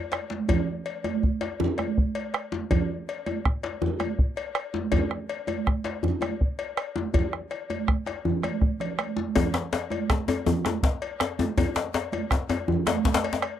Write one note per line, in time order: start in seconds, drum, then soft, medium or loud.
0.12 bombo rim medium
0.12 cowbell soft
0.12 djembe slap soft
0.12 high conga soft
0.30 djembe slap medium
0.30 high conga soft
0.49 bombo rim soft
0.49 bombo low medium
0.49 cowbell medium
0.49 djembe bass medium
0.49 low conga medium
0.68 high conga soft
0.86 cowbell soft
1.04 bombo rim soft
1.04 cowbell soft
1.04 high conga medium
1.04 djembe tone medium
1.23 bombo low medium
1.23 djembe slap soft
1.41 bombo rim soft
1.41 cowbell soft
1.41 djembe slap medium
1.60 bombo rim soft
1.60 low conga medium
1.60 djembe bass medium
1.78 bombo rim medium
1.78 cowbell soft
1.78 djembe tone soft
1.78 high conga medium
1.98 bombo low medium
2.15 cowbell soft
2.15 djembe slap soft
2.34 bombo rim loud
2.34 cowbell soft
2.52 djembe slap medium
2.52 djembe tone medium
2.52 high conga soft
2.71 bombo rim soft
2.71 bombo low loud
2.71 cowbell medium
2.71 low conga medium
2.71 djembe bass medium
2.89 high conga soft
3.09 cowbell soft
3.26 bombo rim soft
3.26 cowbell soft
3.26 high conga medium
3.26 djembe tone medium
3.45 bombo rim medium
3.45 bombo low medium
3.45 djembe slap soft
3.63 bombo rim soft
3.63 cowbell soft
3.63 djembe slap medium
3.63 high conga soft
3.82 bombo rim soft
3.82 djembe bass medium
3.82 low conga medium
4.00 bombo rim medium
4.00 cowbell soft
4.00 djembe tone medium
4.00 high conga medium
4.19 bombo low medium
4.37 cowbell soft
4.37 djembe slap soft
4.55 bombo rim medium
4.55 cowbell soft
4.74 djembe slap medium
4.74 djembe tone medium
4.74 high conga soft
4.92 bombo rim soft
4.92 bombo low medium
4.92 cowbell medium
4.92 djembe bass medium
4.92 low conga medium
5.11 bombo rim medium
5.11 high conga soft
5.29 cowbell soft
5.47 bombo rim soft
5.47 cowbell soft
5.47 djembe tone medium
5.47 high conga medium
5.66 bombo rim medium
5.66 bombo low medium
5.66 djembe slap soft
5.84 bombo rim soft
5.84 cowbell soft
5.84 djembe slap medium
6.03 bombo rim soft
6.03 djembe bass medium
6.03 low conga medium
6.21 bombo rim medium
6.21 cowbell soft
6.21 djembe tone medium
6.21 high conga medium
6.41 bombo low medium
6.59 cowbell soft
6.59 djembe slap soft
6.77 bombo rim medium
6.77 cowbell soft
6.96 djembe slap medium
6.96 djembe tone medium
6.96 high conga soft
7.14 bombo low loud
7.14 cowbell medium
7.14 high conga soft
7.14 djembe bass medium
7.14 low conga medium
7.33 bombo rim medium
7.33 djembe slap soft
7.51 bombo rim soft
7.51 cowbell soft
7.51 djembe slap soft
7.70 cowbell soft
7.70 djembe slap soft
7.70 djembe tone medium
7.70 high conga medium
7.88 bombo rim medium
7.88 bombo low medium
7.88 high conga soft
8.06 bombo rim soft
8.06 cowbell soft
8.06 djembe slap medium
8.25 low conga medium
8.25 djembe bass medium
8.43 bombo rim medium
8.43 cowbell soft
8.43 high conga soft
8.43 djembe tone soft
8.61 bombo rim soft
8.61 bombo low loud
8.61 high conga soft
8.80 bombo rim soft
8.80 cowbell soft
8.80 low conga soft
8.98 bombo rim medium
8.98 cowbell soft
8.98 high conga soft
9.17 djembe slap medium
9.17 djembe tone soft
9.17 high conga medium
9.36 bombo rim soft
9.36 bombo low loud
9.36 cowbell medium
9.36 djembe tone loud
9.36 low conga medium
9.36 djembe bass medium
9.54 bombo rim medium
9.54 djembe slap medium
9.54 high conga soft
9.73 cowbell medium
9.73 djembe slap medium
9.90 bombo rim soft
9.90 cowbell medium
9.90 djembe tone medium
9.90 high conga medium
10.10 bombo rim loud
10.10 bombo low loud
10.10 djembe slap medium
10.28 bombo rim soft
10.28 cowbell medium
10.28 djembe slap medium
10.28 djembe tone medium
10.28 high conga soft
10.46 bombo rim soft
10.46 djembe tone medium
10.46 low conga medium
10.46 djembe bass medium
10.65 bombo rim medium
10.65 djembe slap medium
10.65 djembe tone soft
10.65 high conga medium
10.83 bombo low loud
10.83 djembe slap medium
11.02 cowbell medium
11.02 djembe slap soft
11.20 bombo rim loud
11.20 cowbell soft
11.20 djembe slap medium
11.39 djembe slap medium
11.39 high conga medium
11.39 djembe tone medium
11.58 bombo rim soft
11.58 bombo low medium
11.58 cowbell medium
11.58 djembe tone loud
11.58 low conga medium
11.58 djembe bass medium
11.76 bombo rim medium
11.76 djembe slap medium
11.76 high conga soft
11.94 cowbell medium
11.94 djembe slap medium
12.12 bombo rim soft
12.12 cowbell soft
12.12 high conga medium
12.12 djembe tone medium
12.31 bombo rim medium
12.31 bombo low medium
12.31 djembe slap soft
12.31 djembe slap medium
12.49 bombo rim soft
12.49 cowbell medium
12.49 djembe slap medium
12.49 djembe tone medium
12.49 high conga soft
12.68 bombo rim soft
12.68 low conga medium
12.68 djembe bass medium
12.86 bombo rim medium
12.86 cowbell medium
12.86 djembe slap medium
12.86 high conga medium
12.86 djembe tone medium
13.05 bombo low medium
13.05 djembe slap medium
13.14 djembe slap loud
13.23 cowbell medium
13.23 djembe slap soft
13.33 djembe slap medium
13.42 bombo rim medium
13.42 cowbell medium